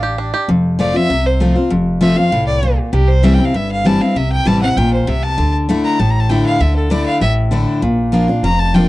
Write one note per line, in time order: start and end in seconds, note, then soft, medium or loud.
0.00 0.31 A1 medium
0.00 0.17 D4 medium
0.00 0.32 G4 medium
0.00 0.15 F5 loud
0.18 0.49 D4 medium
0.34 0.49 G4 medium
0.48 0.92 F1 medium
0.48 1.07 F2 medium
0.79 0.94 F3 medium
0.79 0.94 A3 medium
0.79 0.94 C4 medium
0.79 0.93 F4 loud
0.79 0.98 D5 loud
0.94 1.10 C4 soft
0.94 1.09 F4 medium
0.94 1.27 E5 loud
1.10 1.53 C2 medium
1.10 1.68 C3 medium
1.26 1.56 C5 medium
1.40 1.55 F3 medium
1.40 1.55 A3 medium
1.40 1.56 C4 medium
1.40 1.54 F4 medium
1.55 1.71 C4 soft
1.55 1.70 F4 medium
1.70 2.14 F1 medium
1.70 2.29 F2 medium
2.01 2.16 F3 medium
2.01 2.16 A3 medium
2.01 2.17 C4 loud
2.01 2.15 F4 loud
2.01 2.18 E5 medium
2.16 2.32 C4 soft
2.16 2.31 F4 medium
2.16 2.46 F5 loud
2.32 2.75 C2 medium
2.32 2.61 A2 medium
2.47 2.76 D5 medium
2.63 2.92 A#2 medium
2.93 3.36 C2 medium
2.93 3.51 C3 medium
2.93 3.10 G4 medium
3.08 3.25 C5 loud
3.23 3.38 E3 medium
3.23 3.38 G3 loud
3.23 3.39 C4 loud
3.23 3.37 E4 medium
3.23 3.35 E5 medium
3.34 3.46 G5 loud
3.38 3.54 C4 medium
3.38 3.53 E4 medium
3.45 3.57 F5 medium
3.54 3.97 G1 medium
3.54 4.12 G2 medium
3.54 3.70 E5 loud
3.72 3.87 F5 loud
3.84 4.00 E3 medium
3.84 4.00 G3 medium
3.84 4.00 C4 loud
3.84 3.99 E4 medium
3.84 4.03 A5 loud
4.01 4.16 C4 soft
4.01 4.15 E4 medium
4.01 4.18 F5 medium
4.15 4.37 C2 medium
4.15 4.74 C3 medium
4.15 4.31 E5 loud
4.32 4.48 G5 loud
4.45 4.72 A1 medium
4.45 4.61 E3 loud
4.45 4.61 G3 medium
4.45 4.61 C4 loud
4.45 4.60 E4 loud
4.45 4.61 A5 loud
4.61 4.77 C4 medium
4.61 4.76 E4 medium
4.61 4.79 F#5 loud
4.76 5.03 A#1 medium
4.76 5.06 A#2 medium
4.76 4.92 G5 loud
4.93 5.09 C5 medium
5.07 5.33 C2 medium
5.07 5.36 C3 medium
5.07 5.25 E5 medium
5.23 5.54 A5 loud
5.38 5.82 D2 medium
5.38 5.68 D3 medium
5.69 5.98 D3 medium
5.69 5.98 A3 medium
5.69 5.98 D4 medium
5.69 5.99 E4 loud
5.84 6.01 A#5 loud
5.99 6.42 A1 medium
5.99 6.58 A2 medium
5.99 6.12 A5 medium
6.11 6.21 A#5 loud
6.20 6.31 A5 medium
6.29 6.59 D3 medium
6.29 6.59 A3 medium
6.29 6.59 D4 medium
6.29 6.60 E4 loud
6.29 6.45 G5 loud
6.46 6.62 F5 loud
6.60 7.04 D2 medium
6.60 6.89 D3 medium
6.60 6.75 E5 medium
6.76 6.92 A4 medium
6.90 7.20 D3 medium
6.90 7.20 A3 loud
6.90 7.20 D4 medium
6.90 7.21 E4 loud
6.90 7.05 D5 medium
7.06 7.20 F5 loud
7.21 7.64 A1 medium
7.21 7.80 A2 loud
7.21 7.31 E5 loud
7.51 7.81 D3 medium
7.51 7.81 A3 medium
7.51 7.81 D4 medium
7.51 7.81 E4 loud
7.82 8.26 A#1 medium
7.82 8.41 A#2 medium
8.12 8.28 F3 medium
8.12 8.28 A#3 medium
8.12 8.28 D4 loud
8.12 8.27 F4 loud
8.28 8.43 D4 soft
8.28 8.43 F4 medium
8.43 8.87 F1 medium
8.43 8.89 F2 loud
8.43 8.60 A#5 loud
8.59 8.76 A5 loud
8.74 8.89 F3 medium
8.74 8.89 A#3 medium
8.74 8.89 D4 loud
8.74 8.88 F4 loud
8.74 8.89 G5 medium